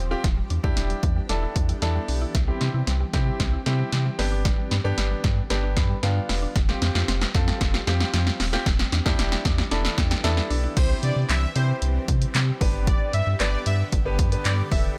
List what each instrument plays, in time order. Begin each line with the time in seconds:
Already playing: sub bass D#1, ambient pad F3 G3 C4 G4
0.11 grand piano C4 F4 G4, synth arpeggio sound F4
0.24 sub bass E1, ambient pad E3 B3 D4, synth arpeggio sound E3, kick, snare, closed hi-hat
0.37 synth arpeggio sound G3
0.50 sub bass E2, synth arpeggio sound D4, closed hi-hat
0.63 sub bass E2, grand piano D4 E4 G4, synth arpeggio sound E4, kick
0.77 sub bass E1, synth arpeggio sound D4, snare, closed hi-hat
0.90 synth arpeggio sound G3, closed hi-hat
1.03 sub bass E2, synth arpeggio sound E3, kick, closed hi-hat
1.16 synth arpeggio sound G3
1.29 sub bass E1, grand piano D4 E4 A4, synth arpeggio sound D4, snare, closed hi-hat
1.43 synth arpeggio sound E4
1.56 sub bass E2, kick, closed hi-hat
1.69 synth arpeggio sound G3, closed hi-hat
1.82 sub bass E2, synth arpeggio sound E3, grand piano D4 E4 A4, snare, closed hi-hat
1.95 synth arpeggio sound G3
2.08 sub bass B1, synth arpeggio sound D4, open hi-hat
2.22 synth arpeggio sound E4
2.35 sub bass C2, synth arpeggio sound E3, ambient pad G3 C4, kick, snare, closed hi-hat
2.48 synth arpeggio sound G3, grand piano C4 E4 G4
2.61 sub bass C3, synth arpeggio sound C4, snare, closed hi-hat
2.74 sub bass C3, synth arpeggio sound E4
2.87 sub bass C2, synth arpeggio sound C4, snare, closed hi-hat
3.00 synth arpeggio sound G3
3.13 sub bass C3, synth arpeggio sound E3, grand piano C4 E4 G4, kick, snare, closed hi-hat
3.27 synth arpeggio sound G3
3.40 sub bass C2, synth arpeggio sound C4, kick, snare, closed hi-hat
3.53 synth arpeggio sound E4
3.66 sub bass C3, grand piano C4 E4 G4, snare, closed hi-hat
3.79 synth arpeggio sound G3
3.92 sub bass C3, synth arpeggio sound E3, snare, closed hi-hat
4.06 synth arpeggio sound G3
4.18 sub bass G1, ambient pad D3 B3, grand piano B3 D4 G4, synth arpeggio sound B3, snare, open hi-hat
4.32 synth arpeggio sound D4
4.45 synth arpeggio sound D3, kick, snare, closed hi-hat
4.58 synth arpeggio sound G3
4.71 sub bass G2, synth arpeggio sound B3, snare, closed hi-hat
4.84 sub bass G2, grand piano B3 D4 G4, synth arpeggio sound D4
4.98 sub bass G1, synth arpeggio sound B3, snare, closed hi-hat
5.11 synth arpeggio sound G3
5.24 sub bass G2, synth arpeggio sound D3, kick, snare, closed hi-hat
5.37 synth arpeggio sound G3
5.50 sub bass G1, grand piano B3 D4 G4, synth arpeggio sound B3, snare, closed hi-hat
5.63 synth arpeggio sound D4
5.77 sub bass G2, grand piano B5, kick, snare, closed hi-hat
5.90 synth arpeggio sound G3
6.03 sub bass G2, synth arpeggio sound D3, grand piano B3 D4 F4 G5, snare, closed hi-hat
6.16 synth arpeggio sound G3
6.29 sub bass E1, synth arpeggio sound B3, snare, open hi-hat
6.42 synth arpeggio sound D4
6.56 sub bass F1, synth arpeggio sound F3, ambient pad F3 G3 C4 G4, kick, snare, closed hi-hat
6.69 synth arpeggio sound G3, grand piano C4 F4 G4, snare
6.82 sub bass F2, synth arpeggio sound C4, snare, closed hi-hat
6.95 sub bass F2, synth arpeggio sound F4, snare
7.08 sub bass F1, synth arpeggio sound C4, snare, closed hi-hat
7.21 synth arpeggio sound G3, snare
7.34 sub bass F2, synth arpeggio sound F3, grand piano C4 F4 A4, kick, snare, closed hi-hat
7.48 synth arpeggio sound G3, snare
7.61 sub bass F1, synth arpeggio sound C4, kick, snare, closed hi-hat
7.74 synth arpeggio sound F4, snare
7.87 sub bass F2, grand piano C4 F4 G4, snare, closed hi-hat
8.00 synth arpeggio sound G3, snare
8.14 sub bass F2, synth arpeggio sound F3, snare, closed hi-hat
8.27 synth arpeggio sound G3, snare
8.40 sub bass D#1, synth arpeggio sound C4, snare, open hi-hat
8.53 grand piano C4 F4 G4, synth arpeggio sound F4, snare
8.66 sub bass E1, ambient pad E3 B3 D4 G4, synth arpeggio sound E3, kick, snare, closed hi-hat
8.79 synth arpeggio sound G3, snare
8.92 sub bass E2, synth arpeggio sound D4, snare, closed hi-hat
9.05 sub bass E2, grand piano D4 E4 G4, synth arpeggio sound E4, kick, snare
9.19 sub bass E1, synth arpeggio sound D4, snare, closed hi-hat
9.32 synth arpeggio sound G3, snare, closed hi-hat
9.45 sub bass E2, synth arpeggio sound E3, grand piano D6, kick, snare, closed hi-hat
9.58 synth arpeggio sound G3, snare
9.71 sub bass E1, grand piano D4 E4 A4 B5, synth arpeggio sound D4, snare, closed hi-hat
9.85 synth arpeggio sound E4, snare
9.98 sub bass E2, grand piano G5, kick, snare, closed hi-hat
10.11 synth arpeggio sound G3, snare, closed hi-hat
10.24 sub bass E2, synth arpeggio sound E3, grand piano D4 E4 A4 E5, snare, closed hi-hat
10.37 synth arpeggio sound G3, snare
10.50 sub bass B1, synth arpeggio sound D4, grand piano E5, open hi-hat
10.64 synth arpeggio sound E4
10.76 sub bass C2, ambient pad E3 G3 C4 G4, grand piano C4 E4 G4 C5, supersaw synth C5, kick, closed hi-hat, crash
11.03 sub bass C3, supersaw synth D5, closed hi-hat
11.16 sub bass C3
11.29 sub bass C2, supersaw synth E5, snare, clap, closed hi-hat
11.55 sub bass C3, grand piano C4 E4 G4 C5, supersaw synth C5, closed hi-hat
11.82 sub bass C2, closed hi-hat
12.08 sub bass C3, kick, closed hi-hat
12.22 closed hi-hat
12.35 sub bass C3, snare, clap, closed hi-hat
12.61 sub bass G1, ambient pad D3 G3 B3 G4, grand piano B3 D4 G4 B4, kick, open hi-hat
12.87 supersaw synth D5, kick, closed hi-hat
13.13 sub bass G2, supersaw synth E5, closed hi-hat
13.27 sub bass G2
13.40 sub bass G1, grand piano B3 D4 G4 B4, supersaw synth D5, snare, clap, closed hi-hat
13.66 sub bass G2, supersaw synth E5, closed hi-hat
13.92 sub bass G1, kick, closed hi-hat
14.05 grand piano B3 D4 G4 B4
14.19 sub bass G2, kick, closed hi-hat
14.32 grand piano B3 D4 G4 B4, closed hi-hat
14.45 sub bass G2, supersaw synth D5, snare, clap, closed hi-hat
14.71 sub bass E1, grand piano B3 D4 G4 A4, supersaw synth E5, kick, open hi-hat